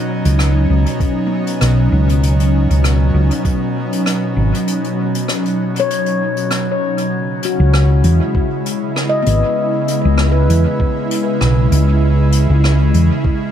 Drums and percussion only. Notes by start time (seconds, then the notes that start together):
0.25 closed hi-hat
0.39 cross-stick, closed hi-hat
0.86 closed hi-hat
1.00 kick, closed hi-hat
1.47 closed hi-hat
1.61 cross-stick, closed hi-hat
2.09 closed hi-hat
2.23 closed hi-hat
2.40 closed hi-hat
2.70 closed hi-hat
2.84 cross-stick, closed hi-hat
3.31 closed hi-hat
3.45 kick, closed hi-hat
3.92 closed hi-hat
4.06 cross-stick, closed hi-hat
4.54 closed hi-hat
4.67 closed hi-hat
4.84 closed hi-hat
5.15 closed hi-hat
5.28 cross-stick, closed hi-hat
5.45 closed hi-hat
5.76 closed hi-hat
5.90 closed hi-hat
6.06 closed hi-hat
6.37 closed hi-hat
6.51 cross-stick, closed hi-hat
6.98 closed hi-hat
7.43 closed hi-hat
7.74 cross-stick
8.04 closed hi-hat
8.35 kick
8.66 closed hi-hat
8.96 cross-stick
9.26 closed hi-hat
9.88 closed hi-hat
10.18 cross-stick
10.50 closed hi-hat
10.80 kick
11.11 closed hi-hat
11.41 cross-stick
11.72 closed hi-hat
12.32 closed hi-hat
12.64 cross-stick
12.94 closed hi-hat
13.25 kick